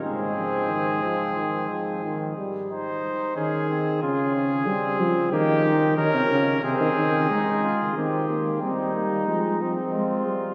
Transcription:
<<
  \new Staff \with { instrumentName = "Trumpet" } { \time 4/4 \key aes \major \tempo 4 = 91 aes'2.~ aes'8 r8 | c''4 aes'4 aes'2 | g'4 bes'4 aes'2 | r1 | }
  \new Staff \with { instrumentName = "Flugelhorn" } { \time 4/4 \key aes \major c'2.~ c'8 r8 | ees'4 des'8 c'8 f'8 des'8 c'4 | bes8 ees'8 des'4 c'4 ees'8 f'8 | g'4 ees'2 f'4 | }
  \new Staff \with { instrumentName = "Trombone" } { \clef bass \time 4/4 \key aes \major aes8 f8 ees8 f8 ees8 f8 ees8 g8 | r1 | r1 | c'8 bes8 c'8 bes8 aes8 c'4. | }
  \new Staff \with { instrumentName = "Tuba" } { \clef bass \time 4/4 \key aes \major aes,2.~ aes,8 r8 | r4 ees4 des4 g8 f8 | ees4 ees16 c16 des8 c16 ees16 ees8 aes4 | ees4 g4 f4 aes8 g8 | }
>>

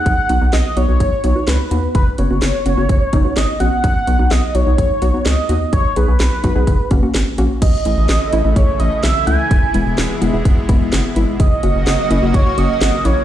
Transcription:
<<
  \new Staff \with { instrumentName = "Analog synth lead" } { \time 4/4 \key b \major \tempo 4 = 127 fis''4 dis''8 cis''4. b'4 | b'8 cis''2~ cis''8 dis''8 fis''8~ | fis''4 dis''8 cis''4. dis''4 | cis''8 b'2. r8 |
dis''2 cis''8 dis''8 e''8 gis''8~ | gis''4. r2 r8 | dis''2 cis''8 dis''4 cis''8 | }
  \new Staff \with { instrumentName = "Synth pluck" } { \time 4/4 \key b \major r8 <b dis' fis'>16 <b dis' fis'>16 r8 <b dis' fis'>16 <b dis' fis'>16 r8 <b dis' fis'>16 <b dis' fis'>16 r8 <b dis' fis'>16 r16 | r8 <b cis' fis'>16 <b cis' fis'>16 r8 <b cis' fis'>16 <b cis' fis'>16 r8 <b cis' dis'>16 <b cis' fis'>16 r8 <b cis' fis'>16 r16 | r8 <b dis' fis'>16 <b dis' fis'>16 r8 <b dis' fis'>16 <b dis' fis'>16 r8 <b dis' fis'>16 <b dis' fis'>16 r8 <b dis' fis'>16 r16 | r8 <b dis' gis'>16 <b dis' gis'>16 r8 <b dis' fis'>16 <b dis' gis'>16 r8 <ais cis' fis'>16 <ais cis' fis'>16 r8 <ais cis' fis'>16 r16 |
r8 <a cis' e'>16 r8. <a cis' e'>16 <a cis' e'>16 r8 <a cis' e'>16 r8. <a cis' e'>16 r16 | r8 <gis b e'>16 r8. <gis b e'>16 <gis b e'>16 r8 <gis b e'>16 r8. <gis b e'>16 r16 | r8 <ais cis' fis'>16 r8. <ais cis' e'>16 <ais cis' fis'>16 r8 <ais cis' fis'>16 r8. <ais cis' e'>16 r16 | }
  \new Staff \with { instrumentName = "Analog synth pad" } { \clef bass \time 4/4 \key b \major << { r1 | r1 | r1 | r1 |
<e e'>1~ | <e e'>1 | <fis fis'>1 | } \\ { r1 | r1 | r1 | r1 |
<cis a>1 | <b, gis>1 | <cis ais>1 | } >> }
  \new Staff \with { instrumentName = "Analog synth bass" } { \clef bass \time 4/4 \key b \major b,,16 r16 b,,16 b,,16 b,,16 r16 b,,16 b,,16 b,,16 r16 b,,16 r16 cis,16 r16 dis,16 r16 | fis,,16 r16 fis,,16 fis,,16 fis,,16 r16 fis,,16 fis,,16 fis,,16 r16 fis,,16 r16 gis,,16 r16 ais,,16 r16 | b,,16 r16 b,,16 b,,16 b,,16 r16 b,,16 b,,16 b,,16 r16 b,,16 r16 cis,16 r16 dis,16 r16 | b,,16 r16 b,,16 b,,16 b,,16 r16 b,,16 b,,16 fis,,16 r16 fis,,16 r16 gis,,16 r16 ais,,16 r16 |
a,,16 r16 a,,16 a,,16 a,,16 r16 a,,16 a,,16 a,,16 r16 a,,16 r16 b,,16 r16 cis,16 r16 | e,,16 r16 e,,16 e,,16 e,,16 r16 e,,16 e,,16 e,,16 r16 e,,16 r16 fis,,16 r16 gis,,16 r16 | fis,,16 r16 fis,,16 fis,,16 fis,,16 r16 fis,,16 fis,,16 fis,,16 r16 fis,,16 r16 gis,,16 r16 ais,,16 r16 | }
  \new DrumStaff \with { instrumentName = "Drums" } \drummode { \time 4/4 <hh bd>8 hh8 <hh sn>8 hh8 <hh bd>8 hh8 <hh sn>8 hh8 | <hh bd>8 hh8 <hh sn>8 hh8 <hh bd>8 <hh bd>8 <hh sn>8 hh8 | <hh bd>8 hh8 <hh sn>8 hh8 <hh bd>8 hh8 <hh sn>8 hh8 | <hh bd>8 hh8 <hh sn>8 <hh bd>8 <hh bd>8 <hh bd>8 <hh sn>8 hh8 |
<cymc hh bd>8 hh8 <hh sn>8 hh8 <hh bd>8 hh8 <hh sn>8 hh8 | <hh bd>8 hh8 <hh sn>8 hh8 <hh bd>8 <hh bd>8 <hh sn>8 hh8 | <hh bd>8 hh8 <hh sn>8 hh8 <hh bd>8 hh8 <hh sn>8 hh8 | }
>>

